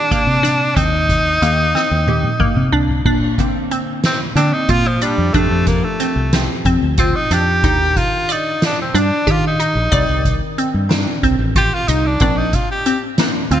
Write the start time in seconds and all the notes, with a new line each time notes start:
Already playing: D#3 D4 G4
0.11 A#3, kick, closed hi-hat
0.27 C3
0.43 D4, snare, closed hi-hat
0.75 D#2 C4 D#4, kick, closed hi-hat
1.09 kick, snare, closed hi-hat
1.42 D#2 D#3 A#3 G4, closed hi-hat
1.75 C4, snare
1.91 D#2
2.07 D#3 A#3 G4, high tom
2.23 high tom
2.40 A#3, kick, mid tom
2.56 C3
2.72 D4, floor tom
2.89 floor tom
3.05 A#2 D4, kick, crash
3.38 D3 A#3 C4, kick, closed hi-hat
3.71 C4, closed hi-hat
4.04 C4, snare, closed hi-hat
4.36 D3 A#3 C4 D4, snare, closed hi-hat
4.53 D#4
4.69 A#2 F4, kick, closed hi-hat
4.87 F3
5.02 G3 D4, closed hi-hat
5.18 F2
5.33 F2 F3 A3 C4 D4 G4, kick, closed hi-hat
5.51 F2
5.67 A#3, kick, snare, closed hi-hat
5.84 A3
6.00 C4, snare, closed hi-hat
6.16 C2
6.33 F3 C4 G4, snare, closed hi-hat
6.65 F2 C4, kick, closed hi-hat
6.82 D2
6.98 C4 F4, kick, snare, closed hi-hat
7.15 D#4
7.31 F2 D4 G4, snare, closed hi-hat
7.64 D#2 D#3 D4 D#4 G4, kick, closed hi-hat
7.96 F4, kick, closed hi-hat
8.29 D#4 D5, closed hi-hat
8.62 D4, snare, closed hi-hat
8.82 C4
8.94 G2 D4, closed hi-hat
9.27 D#3 G4, kick, closed hi-hat
9.31 F4
9.47 D#4
9.60 D#4, closed hi-hat
9.75 A#1
9.92 C2 D#3 C4 D5, kick, closed hi-hat
10.08 C2
10.25 kick, closed hi-hat
10.58 C4, closed hi-hat
10.74 G2
10.89 D#3 C4 D4, snare, closed hi-hat
11.23 C2 C4, kick, closed hi-hat
11.39 A1
11.56 F4 G4, kick, closed hi-hat
11.74 F4
11.88 C2 D#4, closed hi-hat
12.06 D4
12.20 A#1 A#3 C4 D4, kick, closed hi-hat
12.37 D#4
12.53 F4, kick, closed hi-hat
12.71 G4
12.86 C4, closed hi-hat
13.18 A#3 C4 D4, snare, closed hi-hat
13.51 D2 C4 F4, closed hi-hat